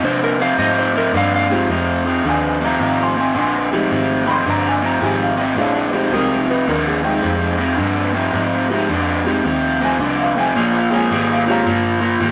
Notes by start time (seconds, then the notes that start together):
0.03 F2 C3 D3 C5
0.24 A#4
0.39 F2 C3 F5
0.57 F2 G#2 C3 D#5
0.79 C5
0.94 F2 C3 A#4
1.13 F2 G2 D3 F5
1.36 F5
1.50 F2 C3 G#3 C4 D#4 F4 G4
1.69 F2 C3 D#4 F4 G#4
2.05 F2 C3 D#4 F4 G#4
2.24 D#2 F2 D3 D#5 G5
2.28 G#5
2.46 D#5 G#5
2.60 F2 C3 F5 A#5
2.79 G#1 F2 C3 F5 A#5
3.03 G#5 C6
3.16 F2 C3 C6
3.20 G#5
3.35 A#1 F2 D3 G#5
3.39 C6
3.71 F2 C3 G#3 C4 D#4 G4
3.90 G#1 F2 C3
4.25 F2 C3 B5
4.31 C6
4.45 G1 F2 D3 A#5
4.68 G#5
4.81 F2 C3 A#5
5.01 G#1 F2 C3 G#3 C4 D#4 G4 G#5
5.23 F5
5.37 F2 C3
5.41 D#5
5.55 A#1 F2 D3 A3 C#4 E4 G#4 F5
5.78 D#5
5.92 F2 C3 G#3 C4 D#4 G4
5.96 C5
6.11 C2 F2 C3 G#3 C4 D#4 F4 G4 G#4 A#4
6.32 C5
6.48 F2 C3 D#4 F4 G#4 B4
6.67 D#2 F2 D3 A#4
6.88 G#4
7.02 F2 C3 G#3 C4 D#4 G5
7.22 F2 C3
7.57 F2 C3
7.77 F2 G2 D3
8.13 F2 C3
8.33 F2 G#2 C3
8.69 F2 C3 G#3 C4 D#4 G4
8.89 F2 D3
9.24 F2 C3 G#3 C4 D#4 G4
9.44 D#2 F2 C3
9.79 F2 C3 G5
9.84 G#5
9.99 C2 F2 D3 D#5
10.21 F5
10.35 F2 C3 G5
10.39 G#5
10.54 A#1 A#2 F3 A#3 C#4 G#4
10.59 D#5
10.77 F5
10.90 A#2 F3 G#3 A#3 C4 C#4 F4 G#4 G5
10.94 G#5
11.10 G#1 A#2 G3 D#5
11.32 F5
11.46 A#2 F3 G#3 C4 C#4 G4
11.51 F5 A#5
11.65 G1 A#2 F3
12.01 A#2 F3
12.20 G#1 A#2 G3